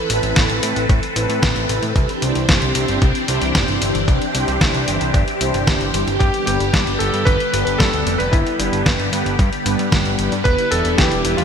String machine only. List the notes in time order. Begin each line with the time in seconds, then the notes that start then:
Already playing: E3 C4 A4 B4
1.96 E3 D4 G4
6.21 D3 G3 B3
10.46 D3 E4